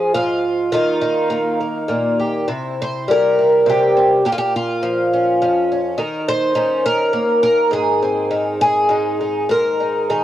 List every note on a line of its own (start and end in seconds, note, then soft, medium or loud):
0.00 0.70 F3 medium
0.00 0.14 G#4 loud
0.14 0.69 G#2 medium
0.14 0.71 F4 loud
0.72 2.49 D#3 medium
0.72 1.29 A#3 soft
0.72 1.00 D#4 soft
0.72 1.59 F4 loud
1.01 2.48 D#4 medium
1.30 1.59 A#3 medium
1.60 1.88 A#3 soft
1.88 2.48 A#2 medium
1.88 2.45 A#3 soft
2.20 2.45 G4 soft
2.48 3.65 C3 medium
2.48 3.37 E4 soft
2.82 3.10 C5 medium
3.08 4.22 G3 medium
3.08 4.26 A#4 loud
3.39 3.68 E4 soft
3.66 4.22 C3 medium
3.66 4.25 G4 medium
3.97 4.22 C4 soft
4.25 5.41 A#2 medium
4.25 4.32 G4 medium
4.32 4.38 F4 medium
4.38 4.54 G4 loud
4.56 5.98 F4 medium
4.83 5.95 F3 medium
5.13 5.41 C#4 soft
5.42 5.99 F2 medium
5.42 5.71 C#4 medium
5.72 5.96 C#4 soft
5.98 6.54 D#3 medium
5.98 6.27 A#4 medium
6.28 6.85 C5 loud
6.55 8.29 D#3 medium
6.55 7.67 C#4 soft
6.86 7.42 A#4 loud
7.13 7.67 A#3 medium
7.43 7.72 A#4 loud
7.71 8.88 G#2 medium
7.71 8.60 G#4 medium
8.03 9.47 C4 medium
8.31 10.09 D#3 medium
8.61 9.51 G#4 loud
8.89 9.46 G#2 medium
8.89 9.19 D#4 medium
9.21 9.47 D#4 soft
9.49 10.24 G#2 medium
9.49 10.10 A#4 medium
9.80 10.24 D#4 soft
10.10 10.24 D#3 medium
10.10 10.24 G#4 medium